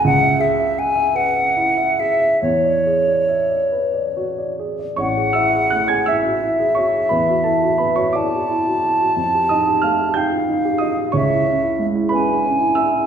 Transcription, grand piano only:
\new Staff \with { instrumentName = "Grand piano" } { \time 6/8 \key a \major \tempo 4. = 58 << { r2. | r2. | <cis'' cis'''>8 <e'' e'''>8 <fis'' fis'''>16 <gis'' gis'''>16 <e'' e'''>4 <cis'' cis'''>8 | <b' b''>8 <a' a''>8 <b' b''>16 <cis'' cis'''>16 <d'' d'''>4. |
r8 <ees'' ees'''>8 <f'' f'''>8 <g'' g'''>4 <ees'' ees'''>8 | <cis'' cis'''>4. <b' b''>4 <e'' e'''>8 | } \\ { cis,16 e''16 gis'16 e''16 fis''16 e''16 b'16 e''16 e'16 e''16 gis'16 e''16 | e,16 d''16 gis'16 d''16 e''16 d''16 b'16 d''16 fis'16 d''16 gis'16 d''16 | a,,16 gis'16 e'16 gis'16 a16 gis'16 e'16 fis'16 e'16 gis'16 fis'16 gis'16 | e,16 fis'16 e'16 fis'16 b16 fis'16 e'16 fis'16 e'16 fis'16 e'16 fis'16 |
f,16 g'16 ees'16 g'16 a16 g'16 ees'16 f'16 ees'16 g'16 f'16 g'16 | cis,16 e'16 cis'16 e'16 gis16 e'16 cis'16 d'16 cis'16 e'16 d'16 e'16 | } >> }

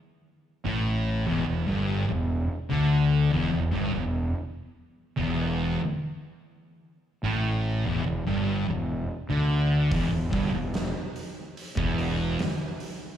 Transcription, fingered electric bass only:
\new Staff \with { instrumentName = "Fingered electric bass" } { \clef bass \time 4/4 \key e \minor \tempo 4 = 73 r8. a,,8. e,,16 e,,16 g,,8 e,,8 r16 d,8. | e,,16 e,,16 g,,16 e,,8 r4 e,,8. r4 | r8. a,,8. e,,16 e,,16 g,,8 e,,8 r16 d,8. | e,,16 e,,16 g,,16 e,,8 r4 e,,8. r4 | }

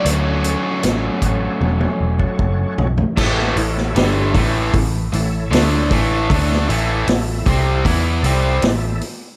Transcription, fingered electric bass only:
\new Staff \with { instrumentName = "Fingered electric bass" } { \clef bass \time 4/4 \key fis \minor \tempo 4 = 77 d,4 a,,8 a,,8 e,,8 e,,8 fis,,8 b,,8 | \key a \mixolydian a,,8 a,,8 g,,8 a,,8 a,,8 a,,8 d,8 a,,8 | d,8 a,,8 a,,8 c,8 e,8 c,8 a,,8 r8 | }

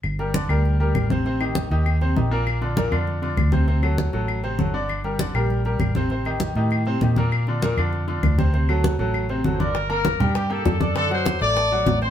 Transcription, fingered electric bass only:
\new Staff \with { instrumentName = "Fingered electric bass" } { \clef bass \time 4/4 \key g \minor \tempo 4 = 198 g,,4. d,4. a,,4~ | a,,4. ees,4. bes,,4~ | bes,,4. f,4. d,4~ | d,4. a,,4. g,,4~ |
g,,4. bes,,4. a,,4~ | a,,4. a,4. bes,4~ | bes,4. f,4. d,4~ | d,4. a,,4. g,,4~ |
g,,4. g,4. fis,4~ | fis,4. a,,4. a,,4 | }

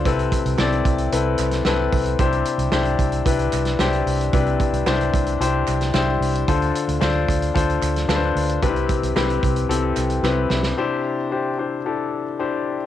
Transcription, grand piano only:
<<
  \new Staff \with { instrumentName = "Grand piano" } { \time 4/4 \key c \major \tempo 4 = 112 <c' e' a' b'>8 r8 <c' e' a' d''>8 r8 <c' e' a' b'>8 r8 <c' e' a' b'>8 r8 | <d' e' g' c''>8 r8 <d' e' g' c''>8 r8 <d' e' g' b'>8 r8 <d' e' g' c''>8 r8 | <d' e' g' b'>8 r8 <d' e' g' c''>8 r8 <d' e' g' c''>8 r8 <d' e' g' c''>8 r8 | <d' f' a' c''>8 r8 <d' f' a' c''>8 r8 <d' f' a' c''>8 r8 <d' f' a' b' c''>8 r8 |
<c' d' e' g' b'>8 r8 <c' e' g' b'>8 r8 <c' e' g' a'>8 r8 <c' e' g' b' b''>8 e''8 | <d' e' g' c''>8 r8 <d' e' g' c''>8 <d' e' g' c''>8 <d' e' g' a'>8 r8 <d' e' g' c''>8 r8 | }
  \new Staff \with { instrumentName = "Grand piano" } { \clef bass \time 4/4 \key c \major c4. r2 r8 | c4. r2 r8 | c4. r2 r8 | d4. r2 r8 |
c4. r2 r8 | c4. r2 r8 | }
>>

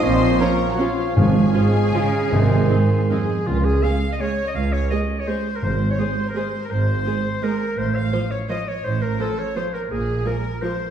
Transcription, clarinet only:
\new Staff \with { instrumentName = "Clarinet" } { \time 3/4 \key des \major \tempo 4 = 164 ees''4 des''4. r8 | f''2.~ | f''2 aes'4 | f'8 aes'8 f''8. ees''16 des''8. ees''16 |
f''8 des''8 ees''8. des''16 c''8. bes'16 | c''8. des''16 c''8. bes'16 c''8. bes'16 | c''2 bes'4 | c''8 f''4 des''8 ees''8 des''8 |
c''8 bes'8 a'8 des''8 c''8 bes'8 | aes'4 bes'4 c''4 | }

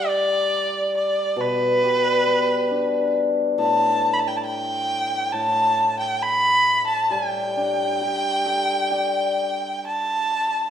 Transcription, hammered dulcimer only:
\new Staff \with { instrumentName = "Hammered dulcimer" } { \time 4/4 \tempo 4 = 68 g4. b,8 g8 b8 d'4 | a,2 a,2 | g8 d'8 g'8 a'8 d''2 | }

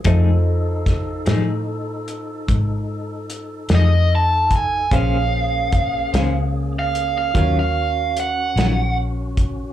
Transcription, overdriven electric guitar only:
\new Staff \with { instrumentName = "Overdriven electric guitar" } { \time 12/8 \key f \phrygian \tempo 4. = 49 r1 r8 ees''8 a''8 gis''8 | f''2~ f''16 f''8 f''8 f''8. ges''4 r4 | }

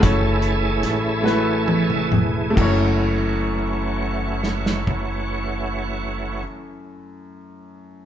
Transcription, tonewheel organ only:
<<
  \new Staff \with { instrumentName = "Tonewheel organ" } { \time 6/8 \key fis \minor \tempo 4. = 43 <cis' e' a'>2~ <cis' e' a'>8 r8 | <e a cis' fis'>2.~ | <e a cis' fis'>2. | }
  \new Staff \with { instrumentName = "Tonewheel organ" } { \time 6/8 \key fis \minor <e a gis'>2. | r2. | r2. | }
>>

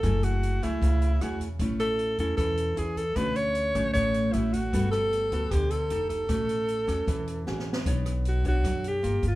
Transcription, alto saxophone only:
\new Staff \with { instrumentName = "Alto saxophone" } { \time 4/4 \key a \major \tempo 4 = 153 a'8 fis'4 e'4. fis'8 r8 | r8 a'4 a'8 a'4 gis'8 a'8 | b'8 cis''4. cis''4 e'8 fis'8~ | fis'8 a'4. g'8 a'4 a'8~ |
a'2.~ a'8 r8 | \key b \dorian r4 fis'8 fis'4 g'4 f'8 | }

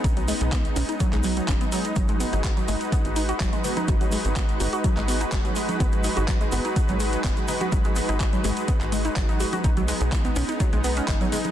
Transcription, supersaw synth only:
\new Staff \with { instrumentName = "Supersaw synth" } { \time 4/4 \key gis \minor \tempo 4 = 125 << { <b dis'>1 | <fis' b'>1~ | <fis' b'>1~ | <fis' b'>1~ |
<fis' b'>1 | <b dis'>1 | } \\ { gis1 | gis1~ | gis1~ | gis1~ |
gis1~ | gis1 | } >> }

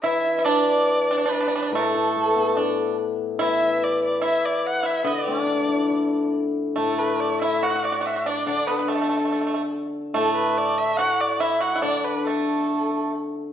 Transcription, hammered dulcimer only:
\new Staff \with { instrumentName = "Hammered dulcimer" } { \clef bass \time 2/4 \tempo 4 = 71 e2 | a,16 e16 a16 b16 e'4 | e2 | d16 a16 d'16 e'16 a'4 |
a,2 | d2 | a,2 | d2 | }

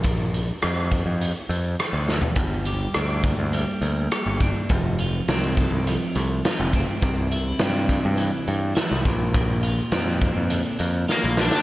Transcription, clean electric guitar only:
\new Staff \with { instrumentName = "Clean electric guitar" } { \time 4/4 \key bes \lydian \tempo 4 = 103 r1 | g,8 g'8 d'8 bes8 g8 bes8 g'8 d'8 | f,8 f'8 c'8 a8 f8 a8 f'8 c'8 | c8 e'8 c'8 g8 e8 g8 e'8 bes,8 |
bes,8 f'8 c'8 bes8 d8 bes8 f'8 c'8 | }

